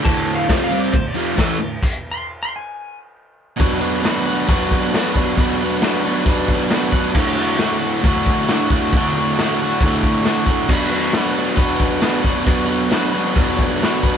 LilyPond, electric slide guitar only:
\new Staff \with { instrumentName = "Electric slide guitar" } { \time 4/4 \key b \minor \tempo 4 = 135 \tuplet 3/2 { a''4 f''8 d''8 f''8 d''8 c''8 d''4~ } d''8 r8 | \tuplet 3/2 { r4 c'''8 r8 c'''8 gis''8~ } gis''8 r4. | r1 | r1 |
r1 | r1 | r1 | r1 | }